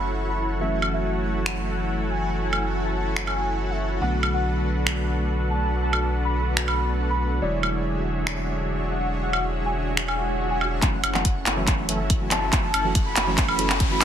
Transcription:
Already playing: F#1 E3 F#3 A3 C#4 E4 F#4 A4 C#5 F#5 B5
0.30 B5
0.59 E3 F#3 A3 C#4 E4 F#4 A4 C#5 E5 F#5
0.63 F#4
0.82 high woodblock
0.93 E5
1.46 finger snap
2.10 G#5
2.42 G#5
2.53 high woodblock
2.85 A5
3.17 finger snap
3.27 G#5, high woodblock
3.70 E5
4.00 B1 D3 F#3 A3 B3 D4 F#4 A4 B4 F#5
4.23 high woodblock
4.34 F#5
4.87 finger snap
5.50 A5
5.83 A5
5.93 high woodblock
6.25 B5
6.57 finger snap
6.68 B5, high woodblock
7.10 B5
7.40 E1 D3 F#3 G#3 D4 E4 F#4 G#4 C#5 D5 E5
7.63 high woodblock
7.74 D5
8.27 finger snap
8.91 F#5
9.23 F#5
9.33 high woodblock
9.66 G#5
9.97 finger snap, swell
10.08 G#5, high woodblock
10.50 G#5
10.61 high woodblock
10.82 F#1 E3 F#3 A3 C#4 F#4 F#5, kick, clap, closed hi-hat, riser
11.04 F#1 C#4 E4 F#4 A4 F#5, closed hi-hat, high woodblock
11.14 E3 F#3 A3 C#4 F#4 F#5, clap
11.25 kick, closed hi-hat
11.46 F#1 C#4 E4 F#4 A4 E5, clap, closed hi-hat
11.56 E3 F#3 A3 C#4 F#4
11.67 kick, clap, closed hi-hat
11.88 E3 F#3 A3 C#4 A4, closed hi-hat
12.10 kick, closed hi-hat
12.20 E3 F#3 A3 C#4 F#4
12.31 A5, clap, closed hi-hat
12.52 F#1 E3 F#3 A3 C#4 F#4, kick, clap, closed hi-hat
12.64 A5
12.74 F#1 C#4 E4 F#4 A4 F#5, closed hi-hat, high woodblock
12.84 E3 F#3 A3 C#4 F#4
12.95 kick, closed hi-hat
13.06 B5
13.16 F#1 C#4 E4 F#4 A4 E5, clap, closed hi-hat
13.27 E3 F#3 A3 C#4 F#4
13.38 kick, clap, closed hi-hat
13.48 B5, high woodblock
13.58 E3 F#3 A3 C#4 A4, closed hi-hat
13.70 clap
13.80 kick, closed hi-hat
13.90 E3 F#3 A3 C#4 F#4 B5

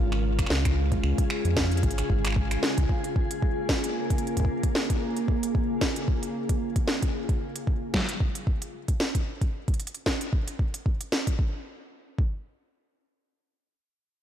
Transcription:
Already playing: G#1 C#3 G#3 F4
0.12 G#4, finger snap
0.39 finger snap, kick, closed hi-hat
0.46 C#2, finger snap, snare
0.55 finger snap
0.65 finger snap, kick, closed hi-hat
0.92 kick, closed hi-hat
1.03 C#2, finger snap
1.18 kick, closed hi-hat
1.30 finger snap
1.45 F2, closed hi-hat
1.57 finger snap, kick, snare
1.71 closed hi-hat
1.77 closed hi-hat
1.83 G#1, kick, closed hi-hat
1.91 closed hi-hat
1.98 finger snap, closed hi-hat
2.10 G#1, kick
2.25 finger snap, closed hi-hat
2.27 finger snap
2.30 finger snap
2.32 finger snap
2.34 finger snap, kick
2.51 finger snap, closed hi-hat
2.63 snare
2.78 C#2, kick, closed hi-hat
2.89 kick
3.03 A#3, closed hi-hat
3.16 kick
3.31 closed hi-hat
3.42 kick
3.69 kick, snare
3.84 closed hi-hat
4.10 kick, closed hi-hat
4.18 closed hi-hat
4.27 closed hi-hat
4.37 kick, closed hi-hat
4.40 kick
4.45 kick
4.63 kick, closed hi-hat
4.75 snare
4.90 kick, closed hi-hat
5.17 closed hi-hat
5.28 kick
5.43 closed hi-hat
5.55 kick
5.81 kick, snare
5.96 closed hi-hat
6.08 kick
6.23 closed hi-hat
6.49 kick, closed hi-hat
6.76 kick, closed hi-hat
6.88 snare
7.03 kick, closed hi-hat
7.29 kick, closed hi-hat
7.56 closed hi-hat
7.67 kick
7.94 kick, snare
8.09 closed hi-hat
8.20 kick
8.35 closed hi-hat
8.47 kick
8.62 closed hi-hat
8.88 kick, closed hi-hat
9.00 snare
9.15 kick, closed hi-hat
9.41 kick, closed hi-hat
9.68 kick, closed hi-hat
9.74 closed hi-hat
9.80 closed hi-hat
9.87 closed hi-hat
9.94 closed hi-hat
10.06 kick, snare
10.21 closed hi-hat
10.33 kick
10.48 closed hi-hat
10.59 kick
10.74 closed hi-hat
10.86 kick
11.01 closed hi-hat
11.12 snare
11.27 kick, closed hi-hat
11.39 kick
12.19 kick

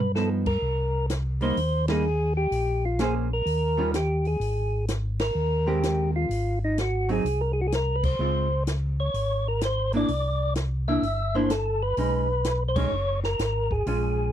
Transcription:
Already playing: G2 B4
0.15 F3 B3 D#4 A4, snare
0.46 A#4, kick, crash
0.62 C2
1.10 snare, closed hi-hat
1.41 G3 A#3 D#4 C5, open hi-hat
1.57 D#2, open hi-hat
1.88 G3 A#3 D#4 G#4, snare, ride
2.37 G4
2.51 A#1, open hi-hat
2.85 F4
2.99 A#3 C#4 G#4 C5, snare, closed hi-hat
3.33 A#4
3.46 D#2, open hi-hat
3.77 D#3 G3 C#4 F4
3.94 G4, snare, closed hi-hat
4.25 G#4, open hi-hat
4.40 G#1, open hi-hat
4.88 snare, closed hi-hat
5.19 A#4, snare, ride
5.35 D#2
5.67 G#3 C4 G4 A#4
5.83 snare, closed hi-hat
6.16 F4
6.29 G#1, open hi-hat
6.64 D#4
6.78 F#4, snare, closed hi-hat
7.09 F#3 C4 D#4 G#4, open hi-hat
7.24 C2, open hi-hat
7.41 A#4
7.53 G#4
7.61 F#4
7.68 G#4
7.72 A#4, snare, closed hi-hat
7.96 B4
8.03 C5, kick, crash
8.19 C#2 G#3 C4 F4
8.67 snare, closed hi-hat
9.00 C#5
9.14 G#1, open hi-hat
9.48 A#4
9.61 C5, snare, closed hi-hat
9.92 A#3 D4 E4, open hi-hat
9.97 D5
10.08 C2, open hi-hat
10.55 snare, closed hi-hat
10.88 A#3 D4 E4 E5
11.02 G1, open hi-hat
11.35 A#3 D4 E4 C5
11.50 A4, snare, closed hi-hat
11.82 B4
11.97 B1 G#3 C#4 D#4, open hi-hat
12.44 snare, closed hi-hat
12.68 C5
12.76 G#3 C#4 D#4 C#5, kick, crash
12.91 F#1
13.24 A#4, snare
13.39 G#1, snare, closed hi-hat
13.71 G#4, kick
13.86 A#1 G#3 C#4 F4 G#4, open hi-hat

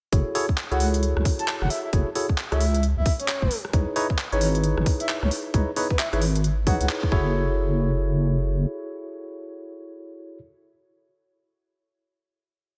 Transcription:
0.12 F#1 E4 F#4 G#4 A4 C#5, kick, closed hi-hat
0.35 E4 F#4 G#4 A4 C#5, open hi-hat
0.49 kick
0.58 clap
0.71 C#2 E4 F#4 G#4 A4 C#5 F#5, closed hi-hat
0.80 open hi-hat
0.94 closed hi-hat
1.03 closed hi-hat
1.17 C#2, cross-stick
1.25 kick, open hi-hat
1.39 A5, closed hi-hat
1.48 clap
1.62 F#1 F#5, cross-stick
1.70 E5, open hi-hat
1.84 E5
1.93 F#1 E4 F#4 G#4 A4 C#5, kick, closed hi-hat
2.15 E4 F#4 G#4 A4 C#5, open hi-hat
2.29 kick
2.38 clap
2.52 C#2 E4 F#4 G#4 A4 C#5 E5, cross-stick, closed hi-hat
2.61 open hi-hat
2.75 closed hi-hat
2.83 closed hi-hat
2.97 C#2 E5
3.06 kick, open hi-hat
3.20 C#5, closed hi-hat
3.28 clap
3.42 F#1, kick
3.51 open hi-hat
3.65 cross-stick
3.73 C#2 D#4 E4 G#4 B4 C#5, kick, closed hi-hat
3.96 D#4 E4 G#4 B4 C#5, open hi-hat
4.10 kick
4.18 clap
4.32 G#1 D#4 E4 G#4 B4 C#5, closed hi-hat
4.41 open hi-hat
4.55 closed hi-hat
4.64 closed hi-hat
4.78 G#1, cross-stick
4.86 kick, open hi-hat
5.00 E5, closed hi-hat
5.09 clap
5.23 C#2 C#5, cross-stick
5.31 open hi-hat
5.54 C#2 D#4 E4 G#4 B4 C#5, kick, closed hi-hat
5.76 D#4 E4 G#4 B4 C#5, open hi-hat
5.90 B4, kick
5.99 E5, clap
6.13 G#1 D#4 E4 G#4 B4 C#5 E5, cross-stick, closed hi-hat
6.22 open hi-hat
6.36 closed hi-hat
6.44 closed hi-hat
6.67 B1 D#4 E4 G#4 B4 C#5 F#5, kick, open hi-hat
6.81 C#2 F#5, closed hi-hat
6.89 clap
7.03 kick
7.12 F#1 E4 F#4 G#4 A4 C#5, kick

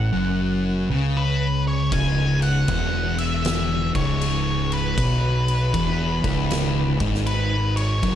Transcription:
Already playing: A2 F#5
0.12 F#1 F#2
0.90 C#2 C#3
1.17 B4
1.68 C#5
1.92 C#1 C#2 G#5, kick, crash
2.42 F#5, crash
2.68 E1 E2, kick, crash
3.18 E5, crash
3.45 snare, crash
3.94 C#1 C#2 C#5, kick, crash
4.21 crash
4.72 B4, crash
4.98 B1 B2, kick, crash
5.48 crash
5.74 E1 E2, kick, crash
6.24 C#1 C#2, kick, crash
6.51 snare, crash
7.00 G#1 G#2, kick, crash
7.14 snare
7.27 B4, crash
7.76 C#5, crash
8.02 F#1 F#2, kick, crash

